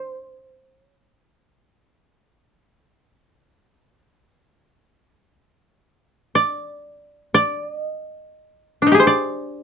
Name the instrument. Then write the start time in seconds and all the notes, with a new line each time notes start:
koto
Already playing: C5 D5
0.81 C#5
1.11 C5
1.43 C#5
1.73 C5
6.35 D5
7.34 D5
7.73 D#5
8.82 D4
8.87 D#4
8.92 G4 G#4
9.00 C5
9.07 D5